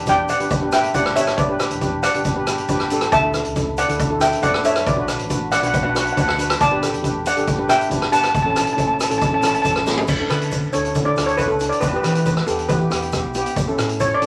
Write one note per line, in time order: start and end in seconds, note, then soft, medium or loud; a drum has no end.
0.00 0.31 E1 medium
0.06 0.27 D4 medium
0.06 0.27 G4 medium
0.06 0.27 B4 medium
0.06 0.29 D5 medium
0.06 0.28 G5 loud
0.06 kick medium
0.06 closed hi-hat medium
0.06 shaker medium
0.29 0.70 D5 medium
0.29 0.70 F#5 medium
0.29 closed hi-hat medium
0.29 shaker loud
0.40 0.83 G1 medium
0.40 0.53 D4 medium
0.40 0.53 G4 medium
0.40 0.53 B4 medium
0.40 closed hi-hat medium
0.40 shaker soft
0.50 kick loud
0.50 closed hi-hat medium
0.50 shaker medium
0.62 0.68 D4 medium
0.62 0.68 G4 medium
0.62 0.68 B4 medium
0.72 0.86 D4 medium
0.72 0.86 G4 medium
0.72 0.86 B4 medium
0.72 0.83 E5 medium
0.72 0.83 G5 medium
0.72 cross-stick medium
0.72 closed hi-hat medium
0.72 shaker medium
0.84 closed hi-hat medium
0.94 1.29 G1 medium
0.94 1.08 D4 medium
0.94 1.08 G4 medium
0.94 1.08 B4 medium
0.94 1.15 D5 medium
0.94 1.17 F#5 medium
0.94 kick medium
0.94 closed hi-hat medium
0.94 shaker medium
1.06 cross-stick medium
1.16 1.36 D4 medium
1.16 1.36 G4 medium
1.16 1.36 B4 medium
1.16 1.36 C#5 medium
1.16 1.38 E5 medium
1.16 closed hi-hat medium
1.16 shaker loud
1.27 cross-stick medium
1.27 closed hi-hat medium
1.37 1.64 G1 loud
1.37 1.79 B4 medium
1.37 1.78 D5 medium
1.37 kick loud
1.37 closed hi-hat medium
1.37 shaker medium
1.49 1.55 D4 medium
1.49 1.55 G4 medium
1.49 1.56 B4 medium
1.60 1.73 D4 medium
1.60 1.73 G4 medium
1.60 1.73 B4 medium
1.60 cross-stick medium
1.60 closed hi-hat medium
1.60 shaker medium
1.71 2.05 E1 medium
1.71 closed hi-hat medium
1.71 shaker soft
1.81 2.01 D4 medium
1.81 2.01 G4 medium
1.81 2.01 B4 medium
1.81 kick medium
1.81 closed hi-hat medium
1.81 shaker medium
2.03 2.87 D5 medium
2.03 2.86 F#5 medium
2.03 cross-stick medium
2.03 closed hi-hat medium
2.03 shaker loud
2.14 2.58 G1 medium
2.14 2.28 D4 medium
2.14 2.28 G4 medium
2.14 2.28 B4 medium
2.14 closed hi-hat medium
2.25 kick loud
2.25 closed hi-hat medium
2.25 shaker medium
2.36 2.42 D4 medium
2.36 2.43 G4 medium
2.36 2.43 B4 medium
2.47 2.61 D4 medium
2.47 2.60 G4 medium
2.47 2.61 B4 medium
2.47 cross-stick medium
2.47 closed hi-hat medium
2.47 shaker medium
2.58 closed hi-hat medium
2.58 shaker soft
2.68 3.03 G1 medium
2.68 2.82 D4 medium
2.68 2.82 G4 medium
2.68 2.82 B4 medium
2.68 kick medium
2.68 closed hi-hat medium
2.68 shaker medium
2.80 cross-stick medium
2.90 3.11 D4 medium
2.90 3.11 G4 medium
2.90 3.11 A4 loud
2.90 closed hi-hat medium
2.90 shaker loud
3.01 cross-stick medium
3.01 closed hi-hat medium
3.12 3.38 D2 loud
3.12 3.74 E5 medium
3.12 3.73 A5 loud
3.12 kick loud
3.12 closed hi-hat medium
3.12 shaker medium
3.23 3.29 D4 medium
3.23 3.30 E4 medium
3.23 3.30 A4 medium
3.34 3.47 D4 medium
3.34 3.47 E4 medium
3.34 3.47 A4 medium
3.34 cross-stick medium
3.34 closed hi-hat medium
3.34 shaker medium
3.45 3.80 C#2 medium
3.45 closed hi-hat medium
3.56 3.75 D4 medium
3.56 3.75 E4 medium
3.56 3.76 A4 medium
3.56 kick medium
3.56 closed hi-hat medium
3.56 shaker medium
3.77 4.19 D5 medium
3.77 4.18 F#5 medium
3.77 closed hi-hat medium
3.77 shaker loud
3.88 4.32 D2 medium
3.88 4.01 D4 medium
3.88 4.02 E4 medium
3.88 4.02 A4 medium
3.88 closed hi-hat medium
3.88 shaker soft
3.99 kick loud
3.99 closed hi-hat medium
3.99 shaker medium
4.09 4.16 D4 medium
4.09 4.17 E4 medium
4.09 4.17 A4 medium
4.20 4.34 D4 medium
4.20 4.34 E4 medium
4.20 4.34 A4 medium
4.20 4.42 E5 medium
4.20 4.44 G5 medium
4.20 cross-stick medium
4.20 closed hi-hat medium
4.20 shaker medium
4.33 closed hi-hat medium
4.41 4.78 F#2 medium
4.41 4.55 D4 medium
4.41 4.55 E4 medium
4.41 4.55 A4 medium
4.41 4.63 D5 medium
4.41 4.63 F#5 loud
4.41 kick medium
4.41 closed hi-hat medium
4.41 shaker medium
4.54 cross-stick medium
4.64 4.84 D4 medium
4.64 4.84 E4 medium
4.64 4.84 A4 medium
4.64 4.85 C#5 medium
4.64 4.87 E5 medium
4.64 closed hi-hat medium
4.64 shaker loud
4.76 cross-stick medium
4.76 closed hi-hat medium
4.76 shaker soft
4.86 5.13 B1 loud
4.86 5.27 B4 medium
4.86 5.27 D5 medium
4.86 kick loud
4.86 closed hi-hat medium
4.86 shaker medium
4.97 5.04 D4 medium
4.97 5.04 F#4 medium
4.97 5.04 B4 medium
5.07 5.21 D4 medium
5.07 5.21 F#4 medium
5.07 5.21 B4 medium
5.07 cross-stick medium
5.07 closed hi-hat medium
5.07 shaker medium
5.19 5.54 A1 medium
5.19 closed hi-hat medium
5.30 5.50 D4 medium
5.30 5.50 F#4 medium
5.30 5.50 B4 medium
5.30 kick medium
5.30 closed hi-hat medium
5.30 shaker medium
5.52 5.59 D5 medium
5.52 5.59 F#5 loud
5.52 cross-stick medium
5.52 closed hi-hat medium
5.52 shaker loud
5.60 6.06 B1 medium
5.60 5.76 D4 medium
5.60 5.76 F#4 medium
5.60 5.76 B4 medium
5.60 5.66 F#5 medium
5.60 closed hi-hat medium
5.67 5.74 F#5 medium
5.74 5.82 F#5 medium
5.74 kick loud
5.74 closed hi-hat medium
5.74 shaker medium
5.83 5.91 D4 medium
5.83 5.91 F#4 medium
5.83 5.91 B4 medium
5.83 5.88 F#5 medium
5.90 5.96 F#5 medium
5.95 6.08 D4 medium
5.95 6.08 F#4 medium
5.95 6.08 B4 medium
5.95 6.04 F#5 medium
5.95 cross-stick medium
5.95 closed hi-hat medium
5.95 shaker loud
6.05 6.11 F#5 medium
6.05 closed hi-hat medium
6.13 6.30 D4 medium
6.13 6.30 F#4 medium
6.13 6.19 F#5 medium
6.17 6.52 D2 loud
6.17 6.30 B4 medium
6.17 kick medium
6.17 closed hi-hat medium
6.17 shaker medium
6.21 6.27 F#5 medium
6.28 6.34 F#5 medium
6.28 cross-stick medium
6.38 6.58 D4 medium
6.38 6.58 F#4 medium
6.38 6.58 B4 medium
6.38 closed hi-hat medium
6.38 shaker loud
6.50 cross-stick medium
6.50 closed hi-hat medium
6.50 shaker soft
6.61 6.87 G1 loud
6.61 7.02 D5 medium
6.61 7.01 A5 loud
6.61 kick loud
6.61 closed hi-hat medium
6.61 shaker medium
6.71 6.78 D4 medium
6.71 6.78 G4 medium
6.71 6.78 B4 medium
6.81 6.95 D4 medium
6.81 6.95 G4 medium
6.81 6.95 A4 medium
6.81 cross-stick medium
6.81 closed hi-hat medium
6.81 shaker medium
6.93 7.28 E1 medium
6.93 closed hi-hat medium
7.02 7.23 D4 medium
7.02 7.23 G4 medium
7.02 7.23 B4 medium
7.02 kick medium
7.02 closed hi-hat medium
7.02 shaker medium
7.26 7.67 D5 medium
7.26 7.67 F#5 medium
7.26 closed hi-hat medium
7.26 shaker medium
7.36 7.80 G1 medium
7.36 7.50 D4 medium
7.36 7.50 G4 medium
7.36 7.50 A4 medium
7.36 closed hi-hat medium
7.36 shaker soft
7.47 kick loud
7.47 closed hi-hat medium
7.47 shaker medium
7.58 7.65 D4 medium
7.58 7.65 G4 medium
7.58 7.65 B4 medium
7.68 7.82 D4 medium
7.68 7.82 G4 medium
7.68 7.82 B4 medium
7.68 8.10 E5 medium
7.68 8.14 G5 medium
7.68 cross-stick medium
7.68 closed hi-hat medium
7.68 shaker loud
7.81 closed hi-hat medium
7.90 8.26 G1 medium
7.90 8.04 D4 medium
7.90 8.04 G4 medium
7.90 8.04 B4 medium
7.90 kick medium
7.90 closed hi-hat medium
7.90 shaker medium
8.02 cross-stick medium
8.12 8.32 D4 medium
8.12 8.32 G4 medium
8.12 8.32 B4 medium
8.12 8.20 F#5 medium
8.12 8.20 A5 loud
8.12 closed hi-hat medium
8.12 shaker loud
8.21 8.27 A5 medium
8.21 cross-stick medium
8.21 closed hi-hat medium
8.28 8.34 A5 medium
8.35 8.61 A1 loud
8.35 8.41 A5 medium
8.35 kick loud
8.35 closed hi-hat medium
8.35 shaker medium
8.42 8.52 C#4 medium
8.42 8.52 E4 medium
8.42 8.52 A4 medium
8.42 8.49 A5 medium
8.50 8.56 A5 medium
8.56 8.69 C#4 medium
8.56 8.69 E4 medium
8.56 8.69 A4 medium
8.56 8.64 A5 medium
8.56 cross-stick medium
8.56 closed hi-hat medium
8.56 shaker medium
8.65 9.02 F#1 medium
8.65 8.72 A5 medium
8.65 closed hi-hat medium
8.73 8.97 C#4 medium
8.73 8.97 E4 medium
8.73 8.97 A4 medium
8.73 8.79 A5 medium
8.78 8.86 A5 medium
8.78 kick medium
8.78 closed hi-hat medium
8.78 shaker medium
8.88 8.93 A5 medium
8.94 9.02 A5 medium
9.00 9.10 A5 medium
9.00 cross-stick medium
9.00 closed hi-hat medium
9.00 shaker medium
9.09 9.54 A1 medium
9.09 9.23 C#4 medium
9.09 9.23 E4 medium
9.09 9.23 A4 medium
9.09 9.17 A5 medium
9.09 closed hi-hat medium
9.18 9.25 A5 medium
9.18 kick loud
9.18 closed hi-hat medium
9.18 shaker medium
9.26 9.33 A5 medium
9.32 9.39 C#4 medium
9.32 9.39 E4 medium
9.32 9.39 A4 medium
9.32 9.40 A5 medium
9.41 9.56 C#4 medium
9.41 9.56 E4 medium
9.41 9.57 A4 medium
9.41 9.46 A5 medium
9.41 cross-stick medium
9.41 closed hi-hat medium
9.41 shaker medium
9.47 9.53 A5 medium
9.54 9.61 A5 medium
9.54 closed hi-hat medium
9.62 10.00 A1 medium
9.62 9.78 C#4 medium
9.62 9.78 E4 medium
9.62 9.78 A4 medium
9.62 9.69 A5 medium
9.62 kick medium
9.62 closed hi-hat medium
9.62 shaker medium
9.71 9.78 A5 medium
9.76 cross-stick medium
9.86 10.06 C#4 medium
9.86 10.06 E4 medium
9.86 10.06 A4 medium
9.86 snare medium
9.86 shaker loud
9.97 floor tom medium
10.08 10.17 D2 medium
10.08 kick loud
10.08 crash loud
10.08 shaker medium
10.19 10.26 D4 medium
10.19 10.26 E4 medium
10.19 10.26 A4 medium
10.29 10.65 D3 medium
10.29 10.57 D4 medium
10.29 10.57 E4 soft
10.29 10.57 A4 medium
10.29 10.75 B4 medium
10.29 cross-stick medium
10.29 closed hi-hat medium
10.29 shaker medium
10.41 closed hi-hat medium
10.41 shaker soft
10.51 kick medium
10.51 closed hi-hat medium
10.51 shaker medium
10.73 10.91 D2 medium
10.73 10.87 D4 medium
10.73 10.87 E4 medium
10.73 10.87 A4 medium
10.73 11.04 C#5 medium
10.73 closed hi-hat medium
10.73 shaker medium
10.85 closed hi-hat medium
10.95 11.13 D3 medium
10.95 11.02 D4 medium
10.95 11.02 E4 medium
10.95 11.02 A4 medium
10.95 kick medium
10.95 closed hi-hat medium
10.95 shaker medium
11.05 11.12 D4 medium
11.05 11.13 E4 medium
11.05 11.13 A4 medium
11.05 11.28 D5 medium
11.05 shaker soft
11.16 11.43 D2 medium
11.16 11.30 D4 medium
11.16 11.30 E4 medium
11.16 11.30 A4 medium
11.16 cross-stick medium
11.16 closed hi-hat medium
11.16 shaker medium
11.26 11.38 C#5 medium
11.26 closed hi-hat medium
11.37 11.52 D4 medium
11.37 11.52 E4 medium
11.37 11.52 A4 medium
11.37 11.48 B4 loud
11.37 kick medium
11.37 closed hi-hat medium
11.37 shaker medium
11.48 11.67 C#2 medium
11.48 11.71 A4 medium
11.48 shaker soft
11.59 11.80 D4 medium
11.59 11.80 E4 medium
11.59 11.80 A4 medium
11.59 closed hi-hat medium
11.59 shaker medium
11.69 11.82 D5 medium
11.69 closed hi-hat medium
11.69 shaker soft
11.80 11.91 E2 medium
11.80 11.87 B4 medium
11.80 kick loud
11.80 closed hi-hat medium
11.80 shaker medium
11.88 11.95 B4 medium
11.93 12.00 B3 medium
11.93 12.00 E4 medium
11.93 12.00 G4 medium
11.93 12.02 B4 medium
11.93 shaker soft
12.02 12.39 E3 medium
12.02 12.29 B3 medium
12.02 12.30 E4 soft
12.02 12.30 G4 medium
12.02 12.10 B4 medium
12.02 cross-stick medium
12.02 closed hi-hat medium
12.02 shaker medium
12.11 12.18 B4 medium
12.11 shaker soft
12.15 12.25 B4 medium
12.15 closed hi-hat medium
12.25 12.33 B4 medium
12.25 kick medium
12.25 closed hi-hat medium
12.25 shaker medium
12.34 12.42 B4 medium
12.34 cross-stick medium
12.34 shaker soft
12.46 12.65 E2 medium
12.46 12.60 B3 medium
12.46 12.61 E4 medium
12.46 12.61 G4 medium
12.46 12.56 A4 medium
12.46 closed hi-hat medium
12.46 shaker medium
12.59 closed hi-hat medium
12.69 12.87 E3 medium
12.69 12.76 B3 medium
12.69 12.76 E4 medium
12.69 12.76 G4 medium
12.69 13.74 B4 medium
12.69 kick loud
12.69 closed hi-hat medium
12.69 shaker medium
12.79 12.86 B3 medium
12.79 12.86 E4 medium
12.79 12.86 G4 medium
12.79 shaker soft
12.90 13.17 E2 medium
12.90 13.04 B3 medium
12.90 13.04 E4 medium
12.90 13.04 G4 medium
12.90 cross-stick medium
12.90 closed hi-hat medium
12.90 shaker medium
13.02 closed hi-hat medium
13.12 13.26 B3 medium
13.12 13.26 E4 medium
13.12 13.26 G4 medium
13.12 kick medium
13.12 cross-stick medium
13.12 closed hi-hat medium
13.12 shaker medium
13.24 13.41 B1 medium
13.34 13.54 B3 medium
13.34 13.54 E4 medium
13.34 13.55 G4 medium
13.34 closed hi-hat medium
13.34 shaker medium
13.46 closed hi-hat medium
13.46 shaker soft
13.56 13.65 A1 medium
13.56 kick loud
13.56 closed hi-hat medium
13.56 shaker medium
13.68 13.74 C#4 medium
13.68 13.74 E4 medium
13.68 13.74 A4 loud
13.68 shaker soft
13.78 14.13 A2 medium
13.78 14.04 C#4 medium
13.78 14.04 E4 medium
13.78 14.04 A4 medium
13.78 cross-stick medium
13.78 closed hi-hat medium
13.78 shaker medium
13.89 closed hi-hat medium
13.89 shaker soft
14.00 14.15 C#5 loud
14.00 kick medium
14.00 closed hi-hat medium
14.00 shaker medium
14.11 14.21 D5 loud
14.11 shaker soft
14.21 14.26 A1 medium
14.21 14.26 C#4 medium
14.21 14.26 E4 medium
14.21 14.26 A4 medium
14.21 closed hi-hat medium
14.21 shaker medium